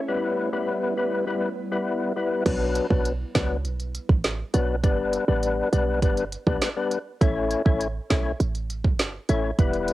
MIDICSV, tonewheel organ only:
0, 0, Header, 1, 2, 480
1, 0, Start_track
1, 0, Key_signature, 2, "minor"
1, 0, Tempo, 594059
1, 67, Time_signature, 4, 2, 24, 8
1, 8023, End_track
2, 0, Start_track
2, 0, Title_t, "Tonewheel organ"
2, 0, Program_c, 0, 16
2, 65, Note_on_c, 0, 55, 87
2, 67, Note_on_c, 0, 59, 83
2, 69, Note_on_c, 0, 64, 79
2, 70, Note_on_c, 0, 71, 97
2, 398, Note_off_c, 0, 55, 0
2, 398, Note_off_c, 0, 59, 0
2, 399, Note_off_c, 0, 64, 0
2, 400, Note_off_c, 0, 71, 0
2, 425, Note_on_c, 0, 55, 70
2, 427, Note_on_c, 0, 59, 65
2, 429, Note_on_c, 0, 64, 65
2, 430, Note_on_c, 0, 71, 78
2, 758, Note_off_c, 0, 55, 0
2, 758, Note_off_c, 0, 59, 0
2, 759, Note_off_c, 0, 64, 0
2, 760, Note_off_c, 0, 71, 0
2, 785, Note_on_c, 0, 55, 75
2, 786, Note_on_c, 0, 59, 65
2, 788, Note_on_c, 0, 64, 66
2, 789, Note_on_c, 0, 71, 78
2, 1007, Note_off_c, 0, 55, 0
2, 1007, Note_off_c, 0, 59, 0
2, 1008, Note_off_c, 0, 64, 0
2, 1009, Note_off_c, 0, 71, 0
2, 1024, Note_on_c, 0, 55, 85
2, 1026, Note_on_c, 0, 59, 78
2, 1028, Note_on_c, 0, 64, 80
2, 1029, Note_on_c, 0, 71, 93
2, 1203, Note_off_c, 0, 55, 0
2, 1204, Note_off_c, 0, 59, 0
2, 1205, Note_off_c, 0, 64, 0
2, 1206, Note_off_c, 0, 71, 0
2, 1385, Note_on_c, 0, 55, 71
2, 1387, Note_on_c, 0, 59, 65
2, 1388, Note_on_c, 0, 64, 61
2, 1390, Note_on_c, 0, 71, 74
2, 1717, Note_off_c, 0, 55, 0
2, 1718, Note_off_c, 0, 59, 0
2, 1719, Note_off_c, 0, 64, 0
2, 1720, Note_off_c, 0, 71, 0
2, 1745, Note_on_c, 0, 55, 75
2, 1747, Note_on_c, 0, 59, 68
2, 1749, Note_on_c, 0, 64, 67
2, 1750, Note_on_c, 0, 71, 82
2, 1967, Note_off_c, 0, 55, 0
2, 1968, Note_off_c, 0, 59, 0
2, 1969, Note_off_c, 0, 64, 0
2, 1970, Note_off_c, 0, 71, 0
2, 1984, Note_on_c, 0, 54, 98
2, 1986, Note_on_c, 0, 59, 88
2, 1988, Note_on_c, 0, 62, 88
2, 1989, Note_on_c, 0, 71, 109
2, 2317, Note_off_c, 0, 54, 0
2, 2318, Note_off_c, 0, 59, 0
2, 2319, Note_off_c, 0, 62, 0
2, 2319, Note_off_c, 0, 71, 0
2, 2345, Note_on_c, 0, 54, 80
2, 2347, Note_on_c, 0, 59, 69
2, 2348, Note_on_c, 0, 62, 68
2, 2350, Note_on_c, 0, 71, 85
2, 2524, Note_off_c, 0, 54, 0
2, 2525, Note_off_c, 0, 59, 0
2, 2525, Note_off_c, 0, 62, 0
2, 2526, Note_off_c, 0, 71, 0
2, 2705, Note_on_c, 0, 54, 81
2, 2706, Note_on_c, 0, 59, 72
2, 2708, Note_on_c, 0, 62, 68
2, 2710, Note_on_c, 0, 71, 86
2, 2883, Note_off_c, 0, 54, 0
2, 2884, Note_off_c, 0, 59, 0
2, 2885, Note_off_c, 0, 62, 0
2, 2886, Note_off_c, 0, 71, 0
2, 3665, Note_on_c, 0, 54, 76
2, 3666, Note_on_c, 0, 59, 71
2, 3668, Note_on_c, 0, 62, 73
2, 3670, Note_on_c, 0, 71, 85
2, 3843, Note_off_c, 0, 54, 0
2, 3844, Note_off_c, 0, 59, 0
2, 3845, Note_off_c, 0, 62, 0
2, 3846, Note_off_c, 0, 71, 0
2, 3906, Note_on_c, 0, 55, 100
2, 3907, Note_on_c, 0, 59, 92
2, 3909, Note_on_c, 0, 62, 88
2, 3911, Note_on_c, 0, 71, 106
2, 4238, Note_off_c, 0, 55, 0
2, 4239, Note_off_c, 0, 59, 0
2, 4239, Note_off_c, 0, 62, 0
2, 4240, Note_off_c, 0, 71, 0
2, 4266, Note_on_c, 0, 55, 76
2, 4268, Note_on_c, 0, 59, 68
2, 4269, Note_on_c, 0, 62, 73
2, 4271, Note_on_c, 0, 71, 88
2, 4598, Note_off_c, 0, 55, 0
2, 4599, Note_off_c, 0, 59, 0
2, 4599, Note_off_c, 0, 62, 0
2, 4600, Note_off_c, 0, 71, 0
2, 4626, Note_on_c, 0, 55, 79
2, 4627, Note_on_c, 0, 59, 73
2, 4629, Note_on_c, 0, 62, 68
2, 4631, Note_on_c, 0, 71, 83
2, 4848, Note_off_c, 0, 55, 0
2, 4848, Note_off_c, 0, 59, 0
2, 4849, Note_off_c, 0, 62, 0
2, 4850, Note_off_c, 0, 71, 0
2, 4865, Note_on_c, 0, 55, 95
2, 4867, Note_on_c, 0, 59, 84
2, 4869, Note_on_c, 0, 62, 87
2, 4870, Note_on_c, 0, 71, 107
2, 5044, Note_off_c, 0, 55, 0
2, 5045, Note_off_c, 0, 59, 0
2, 5045, Note_off_c, 0, 62, 0
2, 5046, Note_off_c, 0, 71, 0
2, 5226, Note_on_c, 0, 55, 76
2, 5227, Note_on_c, 0, 59, 72
2, 5229, Note_on_c, 0, 62, 66
2, 5230, Note_on_c, 0, 71, 81
2, 5404, Note_off_c, 0, 55, 0
2, 5405, Note_off_c, 0, 59, 0
2, 5406, Note_off_c, 0, 62, 0
2, 5406, Note_off_c, 0, 71, 0
2, 5466, Note_on_c, 0, 55, 77
2, 5467, Note_on_c, 0, 59, 72
2, 5469, Note_on_c, 0, 62, 76
2, 5470, Note_on_c, 0, 71, 88
2, 5644, Note_off_c, 0, 55, 0
2, 5645, Note_off_c, 0, 59, 0
2, 5645, Note_off_c, 0, 62, 0
2, 5646, Note_off_c, 0, 71, 0
2, 5825, Note_on_c, 0, 57, 99
2, 5827, Note_on_c, 0, 61, 87
2, 5828, Note_on_c, 0, 64, 90
2, 5830, Note_on_c, 0, 73, 106
2, 6158, Note_off_c, 0, 57, 0
2, 6158, Note_off_c, 0, 61, 0
2, 6159, Note_off_c, 0, 64, 0
2, 6160, Note_off_c, 0, 73, 0
2, 6184, Note_on_c, 0, 57, 76
2, 6186, Note_on_c, 0, 61, 71
2, 6187, Note_on_c, 0, 64, 72
2, 6189, Note_on_c, 0, 73, 89
2, 6363, Note_off_c, 0, 57, 0
2, 6364, Note_off_c, 0, 61, 0
2, 6365, Note_off_c, 0, 64, 0
2, 6366, Note_off_c, 0, 73, 0
2, 6544, Note_on_c, 0, 57, 76
2, 6546, Note_on_c, 0, 61, 70
2, 6548, Note_on_c, 0, 64, 70
2, 6550, Note_on_c, 0, 73, 84
2, 6723, Note_off_c, 0, 57, 0
2, 6724, Note_off_c, 0, 61, 0
2, 6725, Note_off_c, 0, 64, 0
2, 6726, Note_off_c, 0, 73, 0
2, 7505, Note_on_c, 0, 57, 81
2, 7507, Note_on_c, 0, 61, 76
2, 7508, Note_on_c, 0, 64, 74
2, 7510, Note_on_c, 0, 73, 84
2, 7684, Note_off_c, 0, 57, 0
2, 7685, Note_off_c, 0, 61, 0
2, 7685, Note_off_c, 0, 64, 0
2, 7686, Note_off_c, 0, 73, 0
2, 7745, Note_on_c, 0, 55, 102
2, 7746, Note_on_c, 0, 59, 88
2, 7748, Note_on_c, 0, 64, 90
2, 7749, Note_on_c, 0, 71, 108
2, 8023, Note_off_c, 0, 55, 0
2, 8023, Note_off_c, 0, 59, 0
2, 8023, Note_off_c, 0, 64, 0
2, 8023, Note_off_c, 0, 71, 0
2, 8023, End_track
0, 0, End_of_file